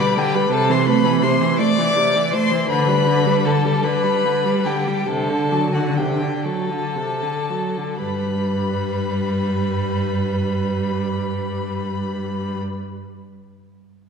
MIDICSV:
0, 0, Header, 1, 5, 480
1, 0, Start_track
1, 0, Key_signature, 1, "major"
1, 0, Tempo, 696056
1, 843, Tempo, 738916
1, 1803, Time_signature, 12, 3, 24, 8
1, 1803, Tempo, 769231
1, 2763, Tempo, 837989
1, 3243, Tempo, 887574
1, 3723, Tempo, 978793
1, 4203, Tempo, 1073345
1, 4683, Tempo, 978793
1, 6123, Tempo, 1005025
1, 7623, End_track
2, 0, Start_track
2, 0, Title_t, "Violin"
2, 0, Program_c, 0, 40
2, 1, Note_on_c, 0, 83, 89
2, 126, Note_on_c, 0, 79, 87
2, 137, Note_off_c, 0, 83, 0
2, 239, Note_on_c, 0, 83, 83
2, 249, Note_off_c, 0, 79, 0
2, 357, Note_off_c, 0, 83, 0
2, 365, Note_on_c, 0, 81, 98
2, 490, Note_on_c, 0, 84, 89
2, 500, Note_off_c, 0, 81, 0
2, 598, Note_on_c, 0, 83, 98
2, 608, Note_off_c, 0, 84, 0
2, 843, Note_on_c, 0, 84, 88
2, 853, Note_off_c, 0, 83, 0
2, 1078, Note_off_c, 0, 84, 0
2, 1081, Note_on_c, 0, 86, 98
2, 1553, Note_off_c, 0, 86, 0
2, 1563, Note_on_c, 0, 84, 99
2, 1798, Note_off_c, 0, 84, 0
2, 1804, Note_on_c, 0, 83, 91
2, 2275, Note_on_c, 0, 81, 77
2, 2284, Note_off_c, 0, 83, 0
2, 2514, Note_on_c, 0, 83, 83
2, 2524, Note_off_c, 0, 81, 0
2, 3005, Note_on_c, 0, 79, 68
2, 3014, Note_off_c, 0, 83, 0
2, 3241, Note_on_c, 0, 81, 84
2, 3250, Note_off_c, 0, 79, 0
2, 3607, Note_on_c, 0, 78, 65
2, 3615, Note_off_c, 0, 81, 0
2, 3725, Note_on_c, 0, 79, 58
2, 3733, Note_off_c, 0, 78, 0
2, 3957, Note_on_c, 0, 81, 64
2, 3964, Note_off_c, 0, 79, 0
2, 4680, Note_off_c, 0, 81, 0
2, 4682, Note_on_c, 0, 83, 61
2, 6904, Note_off_c, 0, 83, 0
2, 7623, End_track
3, 0, Start_track
3, 0, Title_t, "Violin"
3, 0, Program_c, 1, 40
3, 0, Note_on_c, 1, 71, 70
3, 117, Note_off_c, 1, 71, 0
3, 124, Note_on_c, 1, 67, 83
3, 244, Note_on_c, 1, 71, 80
3, 254, Note_off_c, 1, 67, 0
3, 359, Note_on_c, 1, 69, 86
3, 369, Note_off_c, 1, 71, 0
3, 488, Note_on_c, 1, 72, 78
3, 498, Note_off_c, 1, 69, 0
3, 599, Note_off_c, 1, 72, 0
3, 604, Note_on_c, 1, 71, 77
3, 845, Note_on_c, 1, 72, 73
3, 855, Note_off_c, 1, 71, 0
3, 1082, Note_on_c, 1, 74, 88
3, 1092, Note_off_c, 1, 72, 0
3, 1566, Note_on_c, 1, 72, 83
3, 1576, Note_off_c, 1, 74, 0
3, 1792, Note_off_c, 1, 72, 0
3, 1796, Note_on_c, 1, 71, 90
3, 2272, Note_on_c, 1, 69, 77
3, 2281, Note_off_c, 1, 71, 0
3, 2513, Note_on_c, 1, 71, 89
3, 2522, Note_off_c, 1, 69, 0
3, 2998, Note_on_c, 1, 67, 74
3, 3006, Note_off_c, 1, 71, 0
3, 3236, Note_on_c, 1, 69, 70
3, 3244, Note_off_c, 1, 67, 0
3, 3596, Note_off_c, 1, 69, 0
3, 3599, Note_on_c, 1, 66, 48
3, 3720, Note_on_c, 1, 67, 52
3, 3728, Note_off_c, 1, 66, 0
3, 3952, Note_on_c, 1, 69, 57
3, 3959, Note_off_c, 1, 67, 0
3, 4681, Note_off_c, 1, 69, 0
3, 4685, Note_on_c, 1, 71, 56
3, 6906, Note_off_c, 1, 71, 0
3, 7623, End_track
4, 0, Start_track
4, 0, Title_t, "Viola"
4, 0, Program_c, 2, 41
4, 0, Note_on_c, 2, 55, 64
4, 120, Note_on_c, 2, 50, 67
4, 130, Note_off_c, 2, 55, 0
4, 239, Note_on_c, 2, 55, 63
4, 250, Note_off_c, 2, 50, 0
4, 346, Note_off_c, 2, 55, 0
4, 350, Note_on_c, 2, 48, 75
4, 477, Note_on_c, 2, 52, 65
4, 487, Note_off_c, 2, 48, 0
4, 595, Note_on_c, 2, 57, 61
4, 605, Note_off_c, 2, 52, 0
4, 719, Note_on_c, 2, 52, 68
4, 730, Note_off_c, 2, 57, 0
4, 843, Note_on_c, 2, 48, 62
4, 853, Note_off_c, 2, 52, 0
4, 968, Note_on_c, 2, 52, 68
4, 978, Note_off_c, 2, 48, 0
4, 1080, Note_on_c, 2, 57, 68
4, 1090, Note_off_c, 2, 52, 0
4, 1204, Note_on_c, 2, 52, 60
4, 1214, Note_off_c, 2, 57, 0
4, 1321, Note_on_c, 2, 48, 67
4, 1331, Note_off_c, 2, 52, 0
4, 1449, Note_on_c, 2, 52, 59
4, 1459, Note_off_c, 2, 48, 0
4, 1564, Note_on_c, 2, 57, 60
4, 1574, Note_off_c, 2, 52, 0
4, 1680, Note_on_c, 2, 52, 64
4, 1689, Note_off_c, 2, 57, 0
4, 1798, Note_off_c, 2, 52, 0
4, 1802, Note_on_c, 2, 50, 71
4, 1913, Note_on_c, 2, 55, 60
4, 1923, Note_off_c, 2, 50, 0
4, 2032, Note_on_c, 2, 50, 63
4, 2042, Note_off_c, 2, 55, 0
4, 2153, Note_on_c, 2, 55, 57
4, 2162, Note_off_c, 2, 50, 0
4, 2273, Note_on_c, 2, 50, 58
4, 2282, Note_off_c, 2, 55, 0
4, 2394, Note_on_c, 2, 55, 62
4, 2403, Note_off_c, 2, 50, 0
4, 2517, Note_on_c, 2, 50, 60
4, 2526, Note_off_c, 2, 55, 0
4, 2637, Note_on_c, 2, 55, 55
4, 2647, Note_off_c, 2, 50, 0
4, 2768, Note_on_c, 2, 50, 53
4, 2776, Note_off_c, 2, 55, 0
4, 2885, Note_on_c, 2, 55, 58
4, 2894, Note_off_c, 2, 50, 0
4, 3001, Note_on_c, 2, 50, 52
4, 3010, Note_off_c, 2, 55, 0
4, 3126, Note_on_c, 2, 55, 50
4, 3135, Note_off_c, 2, 50, 0
4, 3243, Note_off_c, 2, 55, 0
4, 3246, Note_on_c, 2, 48, 59
4, 3360, Note_on_c, 2, 50, 50
4, 3368, Note_off_c, 2, 48, 0
4, 3483, Note_on_c, 2, 54, 48
4, 3491, Note_off_c, 2, 50, 0
4, 3603, Note_on_c, 2, 50, 49
4, 3611, Note_off_c, 2, 54, 0
4, 3732, Note_on_c, 2, 48, 52
4, 3739, Note_off_c, 2, 50, 0
4, 3843, Note_on_c, 2, 50, 47
4, 3850, Note_off_c, 2, 48, 0
4, 3960, Note_on_c, 2, 54, 47
4, 3967, Note_off_c, 2, 50, 0
4, 4083, Note_on_c, 2, 50, 42
4, 4091, Note_off_c, 2, 54, 0
4, 4210, Note_on_c, 2, 48, 45
4, 4216, Note_off_c, 2, 50, 0
4, 4326, Note_on_c, 2, 50, 40
4, 4333, Note_off_c, 2, 48, 0
4, 4451, Note_on_c, 2, 54, 44
4, 4458, Note_off_c, 2, 50, 0
4, 4574, Note_on_c, 2, 50, 43
4, 4581, Note_off_c, 2, 54, 0
4, 4685, Note_off_c, 2, 50, 0
4, 4688, Note_on_c, 2, 55, 51
4, 6909, Note_off_c, 2, 55, 0
4, 7623, End_track
5, 0, Start_track
5, 0, Title_t, "Cello"
5, 0, Program_c, 3, 42
5, 355, Note_on_c, 3, 48, 65
5, 962, Note_off_c, 3, 48, 0
5, 1801, Note_on_c, 3, 50, 70
5, 2391, Note_off_c, 3, 50, 0
5, 3238, Note_on_c, 3, 50, 66
5, 3836, Note_off_c, 3, 50, 0
5, 4681, Note_on_c, 3, 43, 51
5, 6902, Note_off_c, 3, 43, 0
5, 7623, End_track
0, 0, End_of_file